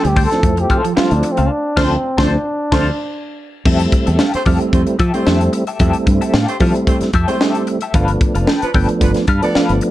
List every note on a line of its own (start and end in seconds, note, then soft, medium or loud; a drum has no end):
0.03 0.25 D2 medium
0.03 0.13 G3 medium
0.03 muted clean electric guitar stroke soft
0.03 closed hi-hat medium
0.08 0.25 G4 loud
0.16 0.26 G3 medium
0.16 0.29 A4 medium
0.16 0.30 C5 medium
0.16 0.30 G5 medium
0.16 kick medium
0.16 open hi-hat medium
0.25 0.62 A4 medium
0.31 0.81 F3 medium
0.31 0.81 A3 medium
0.31 0.82 C4 medium
0.31 0.37 D4 medium
0.31 muted clean electric guitar stroke soft
0.31 snare soft
0.31 closed hi-hat soft
0.38 0.85 E4 medium
0.43 0.64 F2 medium
0.43 0.53 A3 medium
0.43 kick loud
0.43 closed hi-hat medium
0.57 0.80 G4 loud
0.57 muted clean electric guitar stroke soft
0.57 closed hi-hat medium
0.70 0.87 A4 medium
0.70 0.84 C5 medium
0.70 0.83 F5 loud
0.70 kick medium
0.70 closed hi-hat medium
0.78 0.95 A4 medium
0.84 0.93 F3 medium
0.84 muted clean electric guitar stroke soft
0.84 closed hi-hat medium
0.96 1.38 F3 medium
0.96 1.07 G3 medium
0.96 1.38 A3 medium
0.96 1.38 C4 medium
0.96 1.38 E4 medium
0.96 1.16 F4 loud
0.96 1.17 A4 medium
0.96 1.18 C5 loud
0.96 1.18 F5 loud
0.96 muted fingered electric bass stroke medium
0.96 snare loud
1.11 1.21 D2 loud
1.11 1.33 D4 medium
1.11 closed hi-hat soft
1.23 muted clean electric guitar stroke soft
1.23 closed hi-hat medium
1.32 1.51 C4 medium
1.37 1.48 C#2 medium
1.37 1.46 A3 medium
1.37 1.50 A4 medium
1.37 1.50 C5 medium
1.37 1.49 F5 medium
1.37 closed hi-hat medium
1.49 1.87 D4 medium
1.77 1.96 D2 loud
1.77 1.96 F3 loud
1.77 1.91 A3 loud
1.77 1.96 A3 loud
1.77 1.96 C4 medium
1.77 1.96 D4 medium
1.77 1.92 F4 loud
1.77 1.96 A4 loud
1.77 1.96 C5 loud
1.77 1.92 C5 loud
1.77 1.96 F5 loud
1.77 kick loud
1.77 snare loud
1.77 crash medium
1.85 2.23 C4 medium
2.18 2.37 D2 loud
2.18 2.36 F3 loud
2.18 2.32 A3 loud
2.18 2.36 A3 loud
2.18 2.37 C4 loud
2.18 2.32 F4 loud
2.18 2.36 A4 medium
2.18 2.32 C5 loud
2.18 2.36 C5 loud
2.18 kick loud
2.18 snare loud
2.22 3.56 D4 medium
2.72 2.90 D2 loud
2.72 2.90 F3 loud
2.72 2.90 A3 loud
2.72 2.86 A3 loud
2.72 2.90 C4 loud
2.72 2.86 F4 loud
2.72 2.90 A4 loud
2.72 2.86 C5 loud
2.72 2.90 C5 loud
2.72 2.91 F5 loud
2.72 kick loud
2.72 snare loud
2.72 crash medium
3.65 3.86 F2 loud
3.65 4.27 G3 medium
3.65 4.27 A3 medium
3.65 4.27 C4 medium
3.65 4.27 E4 loud
3.65 3.82 G4 medium
3.65 3.82 A4 medium
3.65 3.82 E5 loud
3.65 kick loud
3.65 crash loud
3.79 closed hi-hat medium
3.92 muted clean electric guitar stroke soft
3.92 kick loud
3.92 closed hi-hat medium
4.06 4.17 E2 medium
4.06 4.17 G4 medium
4.06 4.18 A4 medium
4.06 4.18 E5 medium
4.06 closed hi-hat medium
4.19 4.35 G4 medium
4.19 4.33 A4 medium
4.19 4.33 F5 medium
4.19 snare loud
4.33 4.42 A3 loud
4.33 4.42 G4 medium
4.33 4.42 C5 loud
4.33 muted clean electric guitar stroke soft
4.33 muted fingered electric bass stroke soft
4.33 closed hi-hat medium
4.45 4.57 F2 medium
4.45 4.97 G3 loud
4.45 4.97 A3 loud
4.45 4.97 C4 medium
4.45 4.97 E4 loud
4.45 4.59 G4 medium
4.45 4.59 A4 medium
4.45 4.59 F5 medium
4.45 kick medium
4.45 open hi-hat medium
4.60 muted clean electric guitar stroke soft
4.60 closed hi-hat soft
4.73 4.84 F2 loud
4.73 4.82 A3 medium
4.73 4.82 G4 medium
4.73 4.82 C5 medium
4.73 kick medium
4.73 closed hi-hat medium
4.87 muted clean electric guitar stroke soft
4.87 closed hi-hat soft
4.99 5.11 F3 loud
4.99 5.16 G4 medium
4.99 5.13 A4 medium
4.99 5.12 E5 medium
4.99 kick medium
4.99 closed hi-hat medium
5.14 5.64 G3 loud
5.14 5.64 A3 loud
5.14 5.52 A3 loud
5.14 5.65 C4 loud
5.14 5.65 E4 loud
5.14 5.52 G4 loud
5.14 5.52 C5 loud
5.14 muted clean electric guitar stroke medium
5.14 closed hi-hat medium
5.26 5.47 F2 loud
5.26 5.43 G4 medium
5.26 5.43 A4 medium
5.26 5.43 E5 loud
5.26 snare loud
5.41 closed hi-hat medium
5.53 muted clean electric guitar stroke soft
5.53 closed hi-hat medium
5.67 5.79 G4 medium
5.67 5.79 A4 medium
5.67 5.79 E5 medium
5.67 closed hi-hat medium
5.79 5.91 F2 loud
5.79 6.41 G3 medium
5.79 6.41 A3 medium
5.79 6.41 C4 medium
5.79 6.42 E4 medium
5.79 5.96 G4 medium
5.79 5.97 A4 loud
5.79 5.97 E5 medium
5.79 kick loud
5.79 closed hi-hat medium
5.93 closed hi-hat medium
6.06 6.18 G2 medium
6.06 muted clean electric guitar stroke soft
6.06 kick medium
6.06 closed hi-hat medium
6.21 6.33 G4 medium
6.21 6.33 A4 medium
6.21 6.33 E5 medium
6.21 closed hi-hat medium
6.34 6.45 A2 loud
6.34 6.50 G4 medium
6.34 6.48 A4 medium
6.34 6.47 F5 loud
6.34 snare loud
6.48 6.56 A3 loud
6.48 6.56 G4 loud
6.48 6.56 C5 loud
6.48 muted clean electric guitar stroke medium
6.48 closed hi-hat medium
6.60 6.72 F3 medium
6.60 7.11 G3 loud
6.60 7.11 A3 medium
6.60 7.11 C4 medium
6.60 7.12 E4 loud
6.60 6.74 G4 medium
6.60 6.74 A4 medium
6.60 6.74 F5 medium
6.60 kick loud
6.60 open hi-hat medium
6.75 muted clean electric guitar stroke soft
6.75 closed hi-hat soft
6.87 6.97 A3 medium
6.87 6.97 G4 medium
6.87 6.97 C5 medium
6.87 kick loud
6.87 closed hi-hat medium
7.01 muted fingered electric bass stroke soft
7.01 muted clean electric guitar stroke soft
7.01 snare soft
7.01 closed hi-hat medium
7.13 7.25 F2 medium
7.13 7.31 G4 loud
7.13 7.28 A4 loud
7.13 7.27 E5 loud
7.13 kick medium
7.13 closed hi-hat medium
7.28 7.79 G3 loud
7.28 7.34 G#3 medium
7.28 7.66 A3 loud
7.28 7.79 C4 loud
7.28 7.79 E4 loud
7.28 7.66 G4 loud
7.28 7.66 C5 loud
7.28 muted clean electric guitar stroke soft
7.28 closed hi-hat medium
7.34 7.82 A3 medium
7.41 7.62 G4 medium
7.41 7.62 A4 medium
7.41 7.62 E5 medium
7.41 snare loud
7.55 closed hi-hat medium
7.67 muted clean electric guitar stroke soft
7.67 closed hi-hat medium
7.81 7.94 G4 medium
7.81 7.93 A4 medium
7.81 7.94 E5 medium
7.81 closed hi-hat medium
7.94 8.15 G1 loud
7.94 8.55 F3 medium
7.94 8.56 A3 medium
7.94 8.56 B3 medium
7.94 8.56 D4 medium
7.94 8.11 A4 loud
7.94 8.11 B4 loud
7.94 8.11 F5 loud
7.94 kick loud
7.94 closed hi-hat medium
8.08 closed hi-hat medium
8.21 muted clean electric guitar stroke medium
8.21 kick loud
8.21 closed hi-hat medium
8.35 8.45 F1 medium
8.35 8.46 A4 soft
8.35 8.47 B4 soft
8.35 8.47 F5 medium
8.35 closed hi-hat medium
8.47 8.64 A4 medium
8.47 8.62 B4 medium
8.47 8.62 G5 medium
8.47 snare loud
8.62 8.70 F3 loud
8.62 8.71 D4 medium
8.62 8.70 B4 loud
8.62 muted clean electric guitar stroke soft
8.62 muted fingered electric bass stroke soft
8.62 closed hi-hat medium
8.74 8.86 G1 medium
8.74 9.25 F3 medium
8.74 9.26 A3 loud
8.74 9.26 B3 loud
8.74 9.26 D4 loud
8.74 8.88 A4 medium
8.74 8.88 B4 medium
8.74 8.88 G5 medium
8.74 kick loud
8.74 open hi-hat medium
8.89 muted clean electric guitar stroke soft
8.89 closed hi-hat soft
9.01 9.12 G1 loud
9.01 9.11 F3 medium
9.01 9.11 D4 medium
9.01 9.11 B4 medium
9.01 muted clean electric guitar stroke soft
9.01 kick medium
9.01 closed hi-hat loud
9.14 muted clean electric guitar stroke medium
9.14 snare soft
9.14 closed hi-hat medium
9.27 9.39 G2 medium
9.27 9.45 A4 medium
9.27 9.42 B4 medium
9.27 9.41 F5 loud
9.27 kick medium
9.27 closed hi-hat medium
9.42 9.91 F3 loud
9.42 9.91 A3 loud
9.42 9.91 B3 loud
9.42 9.81 B3 loud
9.42 9.91 D4 loud
9.42 9.81 A4 loud
9.42 9.81 D5 loud
9.42 muted clean electric guitar stroke medium
9.42 closed hi-hat medium
9.55 9.72 A4 medium
9.55 9.72 B4 loud
9.55 9.72 F5 loud
9.55 muted fingered electric bass stroke soft
9.55 snare loud
9.69 9.80 G1 medium
9.69 closed hi-hat medium
9.81 muted clean electric guitar stroke medium
9.81 closed hi-hat medium